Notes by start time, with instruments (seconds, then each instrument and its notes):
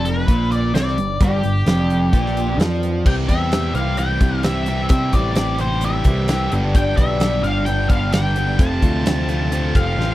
Already playing: picked electric bass F1, overdriven electric guitar F2, steel-string acoustic guitar G3 B3 D4 B4
0.05 lead electric guitar B4, closed hi-hat
0.27 picked electric bass A#1, overdriven electric guitar A#2, steel-string acoustic guitar G3 B3 D4 B4, kick, closed hi-hat
0.51 steel-string acoustic guitar G3 B3 D4 B4, lead electric guitar D5, closed hi-hat
0.73 picked electric bass C2, overdriven electric guitar C3, steel-string acoustic guitar G3 B3 D4 B4, lead electric guitar D5, snare, closed hi-hat
0.97 picked electric bass G1, overdriven electric guitar G2, steel-string acoustic guitar G3 B3 B4, closed hi-hat
1.20 picked electric bass G1, overdriven electric guitar G2, steel-string acoustic guitar D3 G3 B3 D4 B4, lead electric guitar G4, kick, closed hi-hat
1.43 picked electric bass G1, overdriven electric guitar G2, closed hi-hat
1.66 picked electric bass F1, overdriven electric guitar F2, steel-string acoustic guitar G3 B3 D4 B4, snare, closed hi-hat
1.90 closed hi-hat
2.13 picked electric bass A#1, overdriven electric guitar A#2, steel-string acoustic guitar G3 B3 D4 B4, kick, closed hi-hat
2.26 snare
2.35 steel-string acoustic guitar G3 B3 D4 B4, closed hi-hat
2.58 picked electric bass F2, overdriven electric guitar F3, steel-string acoustic guitar G3 B3 D4 B4, snare, closed hi-hat
2.80 steel-string acoustic guitar G3 B3 D4 B4, closed hi-hat
3.05 picked electric bass C2, overdriven electric guitar C3 E3 G3 C4 G4, steel-string acoustic guitar E4, lead electric guitar G5, kick, crash
3.27 picked electric bass E2, overdriven electric guitar C3 E3 G3 C4 G4, steel-string acoustic guitar E4, lead electric guitar E5, kick, closed hi-hat
3.50 overdriven electric guitar C3 E3 G3 C4 G4, steel-string acoustic guitar E4, snare, closed hi-hat
3.74 picked electric bass C2, overdriven electric guitar C3 E3 G3 C4 G4, steel-string acoustic guitar E4, lead electric guitar F5, closed hi-hat
3.97 overdriven electric guitar C3 E3 G3 C4 G4, steel-string acoustic guitar E4, lead electric guitar G5, closed hi-hat
4.21 picked electric bass C2, overdriven electric guitar C3 E3 G3 C4 G4, steel-string acoustic guitar E4, kick, closed hi-hat
4.43 overdriven electric guitar C3 E3 G3 C4 G4, lead electric guitar E5, snare, closed hi-hat
4.66 overdriven electric guitar C3 E3 G3 C4 G4, steel-string acoustic guitar E4, closed hi-hat
4.89 picked electric bass C3, overdriven electric guitar C3 E3 G3 C4 G4, steel-string acoustic guitar E4, lead electric guitar E5, kick, closed hi-hat
5.13 picked electric bass A1, overdriven electric guitar C3 E3 G3 C4 G4, steel-string acoustic guitar E4, lead electric guitar D5, kick, closed hi-hat
5.35 overdriven electric guitar C3 E3 G3 C4 G4, steel-string acoustic guitar E4, snare, closed hi-hat
5.58 overdriven electric guitar C3 E3 G3 C4 G4, steel-string acoustic guitar E4, lead electric guitar C5, closed hi-hat
5.81 overdriven electric guitar C3 E3 G3 C4 G4, steel-string acoustic guitar E4, lead electric guitar E5, closed hi-hat
6.04 picked electric bass C2, overdriven electric guitar C3 E3 G3 C4 G4, steel-string acoustic guitar E4, kick, closed hi-hat
6.28 overdriven electric guitar C3 E3 G3 C4 G4, snare, closed hi-hat
6.52 picked electric bass G1, overdriven electric guitar G2 D3 G3 B3 D4 G4, closed hi-hat
6.75 overdriven electric guitar G2 D3 G3 B3 D4 G4, lead electric guitar G5, kick, closed hi-hat
6.97 picked electric bass B1, overdriven electric guitar G2 D3 G3 B3 D4 G4, lead electric guitar E5, kick, closed hi-hat
7.20 overdriven electric guitar G2 D3 G3 B3 D4 G4, snare, closed hi-hat
7.43 picked electric bass G1, overdriven electric guitar G2 D3 G3 B3 D4 G4, lead electric guitar F5, closed hi-hat
7.66 overdriven electric guitar G2 D3 G3 B3 D4 G4, lead electric guitar G5, closed hi-hat
7.89 picked electric bass G1, overdriven electric guitar G2 D3 G3 B3 D4 G4, lead electric guitar F5, kick, closed hi-hat
8.12 overdriven electric guitar G2 D3 G3 B3 D4 G4, lead electric guitar G5, snare, closed hi-hat
8.36 overdriven electric guitar G2 D3 G3 B3 D4 G4, closed hi-hat
8.59 picked electric bass F1, overdriven electric guitar F2 C3 F3 A3 C4 F4, steel-string acoustic guitar A4, lead electric guitar A5, kick, closed hi-hat
8.80 picked electric bass D2, overdriven electric guitar F2 C3 F3 A3 C4 F4, steel-string acoustic guitar A4, kick, closed hi-hat
9.05 overdriven electric guitar F2 C3 F3 A3 C4 F4, steel-string acoustic guitar A4, snare, closed hi-hat
9.28 overdriven electric guitar F2 C3 F3 A3 C4 F4, steel-string acoustic guitar A4, closed hi-hat
9.51 overdriven electric guitar F2 C3 F3 A3 C4 F4, steel-string acoustic guitar A4, closed hi-hat
9.74 picked electric bass F1, overdriven electric guitar F2 C3 F3 A3 C4 F4, steel-string acoustic guitar A4, lead electric guitar F5, kick, closed hi-hat
9.97 picked electric bass A1, overdriven electric guitar F2 C3 F3 A3 C4 F4, snare